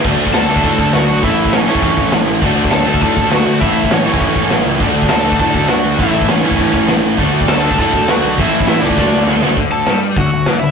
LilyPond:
<<
  \new Staff \with { instrumentName = "Overdriven electric guitar" } { \time 4/4 \key d \major \tempo 4 = 201 r4 <a' a''>4 <a' a''>4 <fis' fis''>4 | <e' e''>4 <cis' cis''>8 <cis' cis''>4. r4 | r4 <a' a''>4 <a' a''>4 <fis' fis''>4 | <e' e''>4 <cis' cis''>8 <cis' cis''>4. r4 |
r4 <a' a''>4 <a' a''>4 <fis' fis''>4 | <e' e''>4 <cis' cis''>8 <cis' cis''>4. r4 | r4 <a' a''>4 <a' a''>4 <fis' fis''>4 | <e' e''>4 <e' e''>8 <d' d''>4. r4 |
r8 <a' a''>4 r8 <fis' fis''>4 r8 <e' e''>8 | }
  \new Staff \with { instrumentName = "Distorted electric guitar" } { \time 4/4 \key d \major <d a d' fis' a'>4. <d a d' fis' a'>2~ <d a d' fis' a'>8 | <a, e a cis' e' a'>4. <a, e a cis' e' a'>2~ <a, e a cis' e' a'>8 | <d a d' fis' a'>4. <d a d' fis' a'>2~ <d a d' fis' a'>8 | <a, e a cis' e' a'>4. <a, e a cis' e' a'>2~ <a, e a cis' e' a'>8 |
<d a d' fis' a'>4. <d a d' fis' a'>2~ <d a d' fis' a'>8 | <a, e a cis' e' a'>4. <a, e a cis' e' a'>2~ <a, e a cis' e' a'>8 | <d a d' fis' a'>4. <d a d' fis' a'>2~ <d a d' fis' a'>8 | <a, e a cis' e' a'>4. <a, e a cis' e' a'>8 <d a d' fis' a'>4. <d a d' fis' a'>8 |
d4 g4 d8 d8 e8 d8 | }
  \new Staff \with { instrumentName = "Overdriven electric guitar" } { \time 4/4 \key d \major <d a d' fis' a'>4. <d a d' fis' a'>2~ <d a d' fis' a'>8 | <a, e a cis' e' a'>4. <a, e a cis' e' a'>2~ <a, e a cis' e' a'>8 | <d a d' fis' a'>4. <d a d' fis' a'>2~ <d a d' fis' a'>8 | <a, e a cis' e' a'>4. <a, e a cis' e' a'>2~ <a, e a cis' e' a'>8 |
<d a d' fis' a'>4. <d a d' fis' a'>2~ <d a d' fis' a'>8 | <a, e a cis' e' a'>4. <a, e a cis' e' a'>2~ <a, e a cis' e' a'>8 | <d a d' fis' a'>4. <d a d' fis' a'>2~ <d a d' fis' a'>8 | <a, e a cis' e' a'>4. <a, e a cis' e' a'>8 <d a d' fis' a'>4. <d a d' fis' a'>8 |
r1 | }
  \new Staff \with { instrumentName = "Picked electric bass" } { \clef bass \time 4/4 \key d \major d,8 d,8 d,8 d,8 a,8 d,8 d,8 b,,8 | a,,8 a,,8 a,,8 a,,8 e,8 a,,8 a,,8 a,,8 | d,8 d,8 d,8 d,8 a,8 d,8 d,8 d,8 | a,,8 a,,8 a,,8 a,,8 e,8 a,,8 a,,8 cis,8 |
d,8 d,8 d,8 d,8 a,8 d,8 d,8 d,8 | a,,8 a,,8 a,,8 a,,8 e,8 a,,8 a,,8 a,,8 | d,8 d,8 d,8 d,8 a,8 d,8 d,8 b,,8 | a,,8 a,,8 a,,8 cis,8 d,8 d,8 d,8 d,8 |
d,4 g,4 d,8 d,8 e,8 d,8 | }
  \new DrumStaff \with { instrumentName = "Drums" } \drummode { \time 4/4 <cymc bd>8 cymc16 bd16 <cymc sn>8 cymc16 bd16 <cymc bd>8 <cymc bd>8 <cymc sn>8 cymc8 | <cymc bd>8 cymc16 bd16 <cymc sn>8 cymc16 bd16 <cymc bd>8 <cymc bd>8 <cymc sn>8 cymc8 | <cymc bd>8 cymc16 bd16 <cymc sn>8 cymc16 bd16 <cymc bd>8 <cymc bd>8 <cymc sn>8 cymc8 | <cymc bd>8 cymc16 bd16 <cymc sn>8 cymc16 bd16 <cymc bd>8 <cymc bd>8 <cymc sn>8 cymc8 |
<cymc bd>8 cymc16 bd16 <cymc sn>8 cymc16 bd16 <cymc bd>8 <cymc bd>8 <cymc sn>8 cymc8 | <cymc bd>8 cymc16 bd16 <cymc sn>8 cymc16 bd16 <cymc bd>8 <cymc bd>8 <cymc sn>8 cymc8 | <cymc bd>8 cymc16 bd16 <cymc sn>8 cymc16 bd16 <cymc bd>8 <cymc bd>8 <cymc sn>8 cymc8 | <cymc bd>8 cymc16 bd16 <cymc sn>8 cymc16 bd16 <bd sn>8 sn8 sn8 sn8 |
<hho bd>4 <hho sn>4 <hho bd>4 <hho sn>4 | }
>>